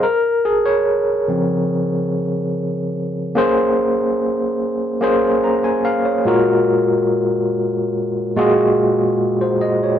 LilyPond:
\new Staff \with { instrumentName = "Tine electric piano" } { \time 4/4 \key bes \dorian \tempo 4 = 72 << { bes'8 aes'16 des''8 r16 <des f c'>8 r2 | r2 r8 bes''16 aes''16 f''16 des''8 r16 | r2. r16 c''16 ees''16 des''16 | } \\ { r1 | <bes des' aes' c''>4. r8 <bes des' aes' c''>4. <bes, aes f' ges' bes'>8~ | <bes, aes f' ges' bes'>4 r4 <bes, aes f' ges' aes'>4. r8 | } >> }